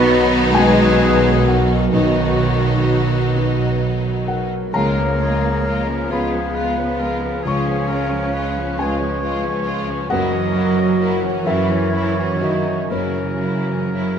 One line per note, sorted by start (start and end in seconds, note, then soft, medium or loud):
0.00 1.89 B1 medium
0.00 4.49 B1 medium
0.00 1.90 B2 medium
0.00 4.36 D#3 medium
0.00 1.90 F#3 medium
0.00 0.52 B3 loud
0.00 1.89 B3 medium
0.00 1.90 D#4 medium
0.00 0.13 F#4 medium
0.00 4.35 F#4 medium
0.00 0.25 B4 loud
0.00 0.26 D#5 loud
0.00 0.52 B5 loud
0.11 0.56 D#4 medium
0.55 1.46 G#3 medium
0.55 1.91 B3 medium
0.55 1.90 D#4 medium
0.55 1.90 F#4 medium
0.55 1.64 G#4 medium
0.55 1.47 G#4 medium
0.55 1.43 B4 medium
0.55 1.42 G#5 loud
1.46 1.92 F#3 medium
1.46 1.93 F#4 medium
1.46 1.95 A#4 medium
1.46 1.91 F#5 medium
1.93 4.69 B1 medium
1.93 4.69 B2 medium
1.93 3.33 D#3 medium
1.93 4.48 F#3 medium
1.93 4.49 B3 medium
1.93 3.31 D#4 medium
1.93 4.49 D#4 medium
1.93 3.98 F#4 medium
1.93 3.33 F#4 medium
1.93 3.29 D#5 medium
3.34 4.71 B3 soft
3.34 4.70 D#4 soft
3.34 4.70 F#4 soft
4.26 4.70 F#3 medium
4.26 4.77 F#4 medium
4.26 4.75 A#4 medium
4.26 4.71 F#5 medium
4.73 5.95 C#2 medium
4.73 7.41 C#2 soft
4.73 7.41 C#3 soft
4.73 10.07 F3 soft
4.73 4.95 G#3 soft
4.73 4.96 G#3 medium
4.73 6.11 A#3 medium
4.73 4.95 F4 soft
4.73 10.08 G#4 medium
4.73 5.22 A#4 medium
4.73 6.13 A#4 medium
4.73 6.12 C#5 medium
4.73 6.07 A#5 medium
4.98 5.20 F3 soft
4.98 5.20 B3 soft
4.98 5.20 C#4 soft
5.20 5.43 G#3 soft
5.20 5.44 G#3 soft
5.20 5.43 F4 soft
5.20 5.68 G#4 soft
5.44 5.66 F3 soft
5.44 5.66 B3 soft
5.44 5.66 C#4 soft
5.66 5.87 G#3 soft
5.66 5.87 F4 soft
5.66 6.13 A#4 soft
5.87 6.11 F3 soft
5.87 6.11 B3 soft
5.87 6.10 C#4 soft
6.10 7.29 C#2 medium
6.10 6.33 G#3 soft
6.10 7.45 B3 medium
6.10 7.41 C#4 soft
6.10 6.32 F4 soft
6.10 7.42 F4 soft
6.10 6.56 G#4 soft
6.10 7.42 G#4 soft
6.10 7.47 B4 medium
6.10 7.45 F5 medium
6.10 7.42 B5 medium
6.32 6.56 F3 soft
6.32 6.55 B3 soft
6.32 6.54 C#4 soft
6.54 6.76 G#3 soft
6.54 6.75 F4 soft
6.54 7.01 B4 medium
6.75 7.01 F3 soft
6.75 6.99 B3 soft
6.75 6.99 C#4 soft
6.97 7.23 G#3 soft
6.97 7.21 F4 soft
6.97 7.44 A#4 medium
7.01 7.23 G#3 soft
7.19 7.45 F3 soft
7.19 7.43 C#4 soft
7.24 7.45 B3 soft
7.43 8.63 C#2 medium
7.43 10.08 C#2 soft
7.43 10.07 C#3 soft
7.43 7.66 G#3 soft
7.43 7.66 G#3 medium
7.43 8.77 C#4 medium
7.43 7.65 F4 soft
7.43 7.90 G#4 medium
7.43 8.79 C#5 medium
7.43 8.82 F5 medium
7.47 8.77 C#6 medium
7.66 7.90 F3 soft
7.66 7.91 B3 soft
7.66 7.89 C#4 soft
7.88 8.13 G#3 soft
7.88 8.11 F4 soft
7.88 8.33 A#4 medium
7.93 8.14 G#3 soft
8.10 8.35 F3 soft
8.10 8.33 C#4 soft
8.14 8.36 B3 soft
8.32 8.55 G#3 soft
8.32 8.56 G#3 soft
8.32 8.54 F4 soft
8.32 8.80 B4 medium
8.56 8.80 F3 soft
8.56 8.80 B3 soft
8.56 8.79 C#4 soft
8.77 9.96 C#2 medium
8.77 9.02 G#3 soft
8.77 9.68 G#3 medium
8.77 9.02 G#3 soft
8.77 10.07 C#4 soft
8.77 9.00 F4 soft
8.77 10.08 F4 soft
8.77 9.66 G#4 medium
8.77 10.08 G#4 soft
8.77 9.68 B4 medium
8.77 10.10 C#5 medium
8.77 9.63 G#5 medium
8.98 9.24 F3 soft
8.98 9.22 C#4 soft
9.03 9.24 B3 soft
9.21 9.44 G#3 soft
9.21 9.45 G#3 soft
9.21 9.43 F4 soft
9.43 9.67 F3 soft
9.43 9.68 B3 medium
9.43 9.66 C#4 soft
9.65 9.89 G#3 medium
9.65 9.90 G#3 medium
9.65 9.88 F4 medium
9.88 10.11 F3 medium
9.88 10.12 B3 soft
9.88 10.11 C#4 soft
10.10 12.87 F#1 medium
10.10 11.29 F#2 medium
10.10 12.86 F#2 medium
10.10 14.19 F#3 medium
10.10 10.31 F#3 medium
10.10 11.41 F#3 medium
10.10 10.32 A#3 medium
10.10 10.31 E4 soft
10.10 11.47 F#4 medium
10.10 11.41 A#4 medium
10.10 14.19 A#4 medium
10.10 11.14 D#5 medium
10.10 11.41 F#5 medium
10.32 10.55 E3 medium
10.32 10.55 C#4 soft
10.32 10.55 C#4 medium
10.55 10.78 F#3 soft
10.55 10.78 A#3 medium
10.55 10.77 E4 soft
10.77 10.99 E3 soft
10.77 11.00 C#4 soft
10.77 11.00 C#4 medium
11.00 11.21 F#3 soft
11.00 11.21 A#3 medium
11.00 11.21 E4 medium
11.22 11.46 E3 soft
11.22 11.45 C#4 medium
11.22 11.47 C#4 soft
11.45 12.73 F#2 medium
11.45 12.41 E3 medium
11.45 11.69 F#3 medium
11.45 11.70 A#3 medium
11.45 12.86 C#4 soft
11.45 12.42 E4 medium
11.45 11.69 E4 medium
11.45 12.87 F#4 soft
11.45 12.44 A#4 medium
11.45 12.87 A#4 soft
11.45 12.86 C#5 medium
11.45 12.37 E5 medium
11.70 11.93 E3 soft
11.70 11.93 C#4 soft
11.70 11.94 C#4 soft
11.93 12.15 F#3 soft
11.93 12.16 A#3 soft
11.93 12.15 E4 soft
12.16 12.41 E3 soft
12.16 12.40 C#4 soft
12.20 12.43 C#4 soft
12.40 12.90 D#3 medium
12.40 12.65 F#3 soft
12.40 12.66 A#3 soft
12.40 12.89 D#4 medium
12.40 12.65 E4 soft
12.40 12.90 F#4 medium
12.40 12.87 D#5 medium
12.65 12.90 E3 soft
12.65 12.90 C#4 soft
12.65 12.91 C#4 soft
12.90 14.19 F#1 soft
12.90 14.19 F#2 soft
12.90 14.19 F#2 medium
12.90 14.19 C#3 medium
12.90 13.14 F#3 soft
12.90 13.15 A#3 soft
12.90 14.19 C#4 medium
12.90 13.14 E4 soft
12.90 14.19 E4 soft
12.90 14.19 A#4 soft
12.90 14.19 C#5 medium
13.15 13.41 E3 soft
13.15 13.41 C#4 soft
13.15 13.42 C#4 soft
13.41 13.67 F#3 soft
13.41 13.69 A#3 soft
13.41 13.68 E4 soft
13.66 13.94 E3 soft
13.66 13.94 C#4 soft
13.66 13.95 C#4 soft
13.93 14.18 F#3 soft
13.93 14.19 A#3 soft
13.93 14.19 E4 soft